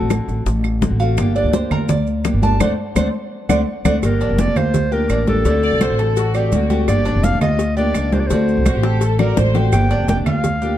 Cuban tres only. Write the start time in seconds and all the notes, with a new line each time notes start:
Already playing: A4
1.00 F5
1.36 D5
1.53 C5
1.72 A#4
1.89 D5
2.43 A5
2.61 C5 D5 F#5
2.96 C5 D5 F#5
3.49 C5 D5 F#5
3.85 C5 D5 F#5
4.21 D4
4.56 F4
4.92 G4
5.10 D4
5.46 D4
5.81 F#4
5.99 A4
6.35 D5
6.70 G4
7.05 D4
7.41 F4
7.77 G4
7.95 D4
8.31 D4
8.66 F#4
8.84 A4
9.19 D5
9.55 G4
9.91 D4
10.26 F4
10.62 G4